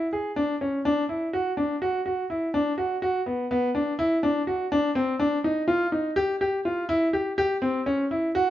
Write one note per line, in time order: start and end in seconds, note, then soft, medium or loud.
0.13 0.30 G#4 medium
0.36 0.54 D4 medium
0.61 0.78 C#4 medium
0.85 1.02 D4 medium
1.09 1.26 E4 medium
1.33 1.50 F#4 medium
1.57 1.74 D4 medium
1.82 1.99 F#4 medium
2.06 2.23 F#4 medium
2.30 2.47 E4 medium
2.54 2.71 D4 medium
2.78 2.95 F#4 medium
3.02 3.19 F#4 medium
3.26 3.43 B3 medium
3.51 3.68 B3 medium
3.75 3.92 D4 medium
3.99 4.16 E4 loud
4.23 4.40 D4 medium
4.47 4.64 F#4 medium
4.72 4.89 D4 medium
4.95 5.13 C4 medium
5.20 5.37 D4 medium
5.44 5.61 D#4 medium
5.68 5.85 F4 medium
5.92 6.09 D#4 medium
6.16 6.33 G4 loud
6.41 6.58 G4 medium
6.65 6.82 F4 medium
6.89 7.06 E4 loud
7.13 7.31 G4 medium
7.38 7.55 G4 loud
7.62 7.79 C4 medium
7.86 8.03 C#4 medium
8.11 8.28 E4 medium
8.35 8.50 F#4 loud